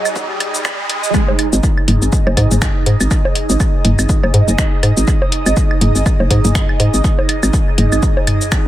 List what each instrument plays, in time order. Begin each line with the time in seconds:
Already playing: analog synth pad D#4 G#4 D#5, riser
0.05 claves, shaker
0.16 kick, shaker
0.40 closed hi-hat, mid tom, claves
0.54 shaker
0.65 finger snap, kick, claves, shaker
0.90 closed hi-hat
1.04 shaker
1.14 analog synth pad D#4, kick, claves, shaker
1.28 high bongo
1.39 closed hi-hat, claves
1.53 fm bass G#1, shaker
1.59 analog synth pad G#4
1.63 kick, shaker
1.73 analog synth pad D#5
1.78 claves
1.88 fm bass F#1, closed hi-hat, mid tom
2.02 fm bass G#1, shaker
2.12 kick, shaker
2.27 fm bass F#1, high bongo, claves
2.37 fm bass G#2, kick, closed hi-hat, claves
2.51 fm bass F#1, mid tom, shaker
2.62 finger snap, kick, shaker
2.86 fm bass G#2, closed hi-hat
3.00 fm bass G#1, claves, shaker
3.11 kick, claves, shaker
3.25 high bongo
3.35 closed hi-hat
3.50 fm bass G#1, shaker
3.60 kick, claves, shaker
3.85 fm bass F#1, closed hi-hat, mid tom
3.99 fm bass G#1, claves, shaker
4.09 kick, shaker
4.23 fm bass F#1, high bongo, claves
4.34 fm bass G#2, closed hi-hat, mid tom
4.48 fm bass F#1, shaker
4.58 finger snap, kick, shaker
4.83 fm bass G#2, closed hi-hat, claves
4.97 fm bass G#1, shaker
5.08 kick, shaker
5.22 high bongo
5.32 closed hi-hat
5.46 fm bass G#1, claves, shaker
5.57 kick, shaker
5.71 claves
5.81 fm bass F#1, closed hi-hat, mid tom
5.95 fm bass G#1, shaker
6.06 kick, claves, shaker
6.20 fm bass F#1, high bongo
6.31 fm bass G#2, kick, closed hi-hat
6.45 fm bass F#1, mid tom, shaker
6.55 finger snap, kick, claves, shaker
6.69 claves
6.80 fm bass G#2, closed hi-hat
6.94 fm bass G#1, shaker
7.04 kick, shaker
7.19 high bongo
7.29 closed hi-hat, claves
7.43 fm bass G#1, claves, shaker
7.53 kick, shaker
7.78 fm bass F#1, closed hi-hat, mid tom
7.92 fm bass G#1, claves, shaker
8.03 kick, shaker
8.17 high bongo
8.27 closed hi-hat, mid tom, claves
8.41 shaker
8.52 finger snap, kick, claves, shaker